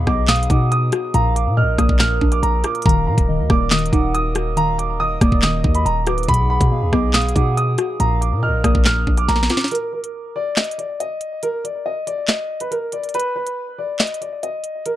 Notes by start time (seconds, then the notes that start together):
Already playing: B2 F#3 B3 D#4 G#4
0.07 B1 B3 D#5 D6, kick, cross-stick
0.28 B2 F5 D#6, snare, clap, closed hi-hat
0.36 closed hi-hat
0.43 closed hi-hat
0.50 B2 D#4 F#5 D6, kick, closed hi-hat
0.72 D#6, closed hi-hat
0.92 F#4, cross-stick, closed hi-hat
1.14 A#1 A#2 F3 A#3 D4 A#4 F5 A#5, closed hi-hat
1.36 D6, closed hi-hat
1.46 A#2
1.57 A#2 D#5 F6
1.62 A#1
1.78 A#1 A#3 D5 D#6, kick, cross-stick, closed hi-hat
1.89 A#1, kick
1.99 A#2 A#4 F6, snare, clap
2.21 A#1 D4, kick
2.32 D6, closed hi-hat
2.43 A#1 A#5, closed hi-hat
2.64 F4 D6, cross-stick, closed hi-hat
2.75 closed hi-hat
2.82 D#1 D#3 F#3 D#4 F5 A#5, kick, closed hi-hat
2.89 closed hi-hat
3.07 A#2 A#5
3.18 D#1, kick, closed hi-hat
3.28 D#3 D#5
3.39 D#2
3.50 D#1 A#3 D5 D6, kick, cross-stick
3.71 D#3 D#5 D#6, snare, clap, closed hi-hat
3.78 closed hi-hat
3.86 closed hi-hat
3.92 D#1 D#4 F#5 D6, kick, closed hi-hat
4.14 D#6, closed hi-hat
4.35 F#4, cross-stick, closed hi-hat
4.57 D#3 F5 A#5, closed hi-hat
4.79 D6, closed hi-hat
5.00 D#3 D#5 D#6
5.21 D#1 A#3 D5 D6, kick, cross-stick, closed hi-hat
5.32 D#1, kick
5.42 D#3 D#5 D#6, snare, clap
5.64 D#2 D#4, kick
5.75 B5, closed hi-hat
5.85 D#1 A#5, closed hi-hat
6.07 D1 F#4 B4 D6, cross-stick, closed hi-hat
6.18 D#1, closed hi-hat
6.23 closed hi-hat
6.28 B1 B2 F#3 B3 D#4 G#4 F#5 B5, kick, closed hi-hat
6.34 closed hi-hat
6.50 B5
6.61 B2, kick, closed hi-hat
6.71 B2 F5
6.82 D#2
6.93 B1 B3 D#5 D6, kick, cross-stick
7.13 B2 F5 D#6, snare, clap, closed hi-hat
7.21 closed hi-hat
7.29 closed hi-hat
7.35 B2 D#4 F#5 D6, kick, closed hi-hat
7.57 D#6, closed hi-hat
7.78 F#4, cross-stick, closed hi-hat
8.00 A#1 A#2 F3 A#3 D4 A#4 F5 A#5, closed hi-hat
8.21 D6, closed hi-hat
8.32 A#2
8.43 A#2 D#5 F6
8.48 A#1
8.64 A#1 A#3 D5 D#6, kick, cross-stick, closed hi-hat
8.75 A#1, kick
8.85 A#2 A#4 F6, snare, clap
9.07 A#1 D4, kick
9.17 D6, closed hi-hat
9.28 A#1 A#5, snare, closed hi-hat
9.36 snare
9.43 snare
9.49 F4 D6, snare, closed hi-hat
9.57 snare, closed hi-hat
9.64 snare, closed hi-hat
9.71 A#4, closed hi-hat
9.75 closed hi-hat
9.93 A#4
10.04 closed hi-hat
10.36 D5
10.56 D#5, snare, clap, closed hi-hat
10.64 closed hi-hat
10.71 closed hi-hat
10.78 D5, closed hi-hat
11.00 D#5, closed hi-hat
11.21 closed hi-hat
11.43 A#4, closed hi-hat
11.64 D5, closed hi-hat
11.86 D#5
12.07 D5, closed hi-hat
12.28 D#5, snare, clap
12.60 B4, closed hi-hat
12.71 A#4, closed hi-hat
12.92 D5, closed hi-hat
13.04 closed hi-hat
13.09 closed hi-hat
13.14 B4, closed hi-hat
13.20 closed hi-hat
13.36 B4
13.47 closed hi-hat
13.78 D5
13.99 D#5, snare, clap, closed hi-hat
14.07 closed hi-hat
14.14 closed hi-hat
14.21 D5, closed hi-hat
14.43 D#5, closed hi-hat
14.64 closed hi-hat
14.86 A#4, closed hi-hat